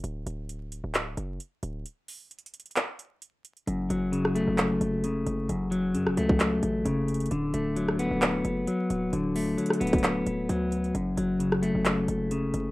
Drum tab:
HH |x-----------x-----------x-----------x-----------x-----------x-----------x-----------x-----------|x-----------o-----------x---x---x---x--x--x--x--x-----------x-----------x-----------x-----x-----|x-----------x-----------x-----------x-----------x-----------x-----------x-----------x-----------|x-----------x-----------x-----------x-----------x-----------x-----------x-----------x--x--x--x--|
CP |------------------------------------------------x-----------------------------------------------|------------------------------------------------x-----------------------------------------------|------------------------------------------------x-----------------------------------------------|------------------------------------------------x-----------------------------------------------|
SD |------------------------------------------------------------------------------------------------|------------------------------------------------------------------------------------------------|------------------------------r-----------------------------------------------------------------|------------------------------r-----------------------------------------------------------------|
BD |------------------------------------------------------------------------------------------------|------------------------------------------------------------------------------------------------|------------------------------------------------------------------------------------------------|------------------------------------------o-----------------------------------------------------|

HH |x-----------x-----------x-----------x-----------x-----------x-----------x-----------x-----------|x-----------o-----------x---x---x---x--x--x--x--x-----------x-----------x-----------x-----x-----|x-----------x-----------x-----------x-----------x-----------x-----------x-----------x-----------|
CP |------------------------------------------------x-----------------------------------------------|------------------------------------------------x-----------------------------------------------|------------------------------------------------x-----------------------------------------------|
SD |------------------------------r-----------------------------------------------------------------|------------------------------r-----------------------------------------------------------------|------------------------------r-----------------------------------------------------------------|
BD |------------------------------------------------------------------------------------------------|------------------------------------------o-----------------------------------------------------|------------------------------------------------------------------------------------------------|